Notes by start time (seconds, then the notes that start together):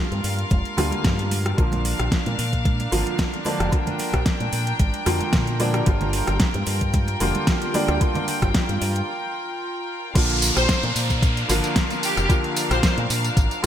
Already playing: D3 G3 A#3 F4 A#4 F5
0.12 G2, closed hi-hat, high conga, cabasa
0.24 G2, open hi-hat, cabasa
0.39 closed hi-hat, cabasa
0.50 F1, kick, closed hi-hat, high conga, cabasa
0.65 closed hi-hat, cabasa
0.77 D2 D3 G3 A#3 F4, cross-stick, open hi-hat, low conga, cabasa
0.92 muted fingered electric bass stroke, closed hi-hat, high conga, cabasa
1.04 G2, kick, snare, closed hi-hat, low conga, cabasa
1.18 closed hi-hat, cabasa
1.31 open hi-hat, high conga, cabasa
1.46 cross-stick, closed hi-hat, cabasa
1.57 A#1 D3 F3 A#3 D4 F4 A#4 F5, kick, closed hi-hat, cabasa
1.72 closed hi-hat, high conga, low conga, cabasa
1.85 open hi-hat, muted conga, cabasa
1.99 A#1, cross-stick, closed hi-hat, cabasa
2.12 kick, snare, closed hi-hat, cabasa
2.26 A#2, closed hi-hat, high conga, cabasa
2.39 A#2, open hi-hat, cabasa
2.52 kick, closed hi-hat, cabasa
2.65 kick, closed hi-hat, high conga, cabasa
2.79 closed hi-hat, muted conga, cabasa
2.91 G#1 D3 F3 A#3 F4, open hi-hat, cabasa
3.06 closed hi-hat, muted conga, high conga, cabasa
3.18 kick, snare, closed hi-hat, cabasa
3.33 closed hi-hat, cabasa
3.45 D3 F3 A#3 D4, open hi-hat, high conga, cabasa
3.60 F1, cross-stick, closed hi-hat, cabasa
3.71 D3 F3 A#3 F4 G5, kick, closed hi-hat, cabasa
3.87 closed hi-hat, high conga, low conga, cabasa
3.99 open hi-hat, muted conga, cabasa
4.13 A#1, kick, cross-stick, closed hi-hat, cabasa
4.26 kick, snare, closed hi-hat, cabasa
4.40 A#2, closed hi-hat, high conga, cabasa
4.52 A#2, open hi-hat, cabasa
4.67 closed hi-hat, cabasa
4.79 G#1, kick, closed hi-hat, high conga, cabasa
4.94 closed hi-hat, cabasa
5.06 F2 D3 F3 A#3 F4, cross-stick, open hi-hat, muted conga, low conga, cabasa
5.20 muted fingered electric bass stroke, closed hi-hat, high conga, cabasa
5.33 A#2, kick, snare, closed hi-hat, low conga, cabasa
5.47 closed hi-hat, cabasa
5.59 D3 F3 A#3 D4, open hi-hat, high conga, cabasa
5.74 cross-stick, closed hi-hat, muted conga, cabasa
5.86 G1 D3 G3 A#3 F4 G5, kick, closed hi-hat, cabasa
6.01 closed hi-hat, high conga, low conga, cabasa
6.13 open hi-hat, muted conga, cabasa
6.27 G1, cross-stick, closed hi-hat, cabasa
6.40 kick, snare, closed hi-hat, cabasa
6.54 G2, closed hi-hat, high conga, cabasa
6.66 G2, open hi-hat, cabasa
6.81 kick, closed hi-hat, cabasa
6.93 kick, closed hi-hat, high conga, cabasa
7.08 closed hi-hat, muted conga, cabasa
7.20 F1 D3 G3 A#3 F4, open hi-hat, cabasa
7.35 closed hi-hat, muted conga, high conga, cabasa
7.47 kick, snare, closed hi-hat, cabasa
7.62 closed hi-hat, cabasa
7.74 D3 G3 A#3 D4, open hi-hat, high conga, cabasa
7.88 D2, cross-stick, closed hi-hat, cabasa
8.00 D3 G3 A#3 F4, kick, closed hi-hat, cabasa
8.15 closed hi-hat, high conga, low conga, cabasa
8.28 open hi-hat, muted conga, cabasa
8.42 G1, kick, cross-stick, closed hi-hat, cabasa
8.54 kick, snare, closed hi-hat, cabasa
8.69 G2, closed hi-hat, high conga, cabasa
8.81 G2, open hi-hat, cabasa
8.96 closed hi-hat, cabasa
10.14 A#1 D3 F3 A#3 D4 F4 A#4 F5, kick, closed hi-hat, crash, tambourine, downlifter
10.30 closed hi-hat
10.42 open hi-hat, tambourine
10.56 A#1 C5, cross-stick, closed hi-hat, tambourine
10.69 kick, snare, closed hi-hat, tambourine
10.83 A#2, closed hi-hat
10.96 A#2, open hi-hat, tambourine
11.10 kick, closed hi-hat, tambourine
11.23 kick, closed hi-hat, tambourine
11.37 closed hi-hat, tambourine
11.48 G#1 D3 F3 A#3 F4, open hi-hat, tambourine
11.64 closed hi-hat, tambourine
11.76 kick, snare, closed hi-hat, tambourine
11.90 closed hi-hat, tambourine
12.03 G4, open hi-hat, tambourine
12.17 F1, cross-stick, closed hi-hat, tambourine
12.28 D3 F3 A#3 F4, kick, closed hi-hat, tambourine
12.44 closed hi-hat
12.56 open hi-hat, tambourine
12.71 A#1 C5, cross-stick, closed hi-hat, tambourine
12.83 C5, kick, snare, closed hi-hat, tambourine
12.97 A#2, closed hi-hat
13.10 A#2, open hi-hat, tambourine
13.24 closed hi-hat, tambourine
13.37 G#1, kick, closed hi-hat, tambourine
13.51 closed hi-hat, tambourine
13.63 D3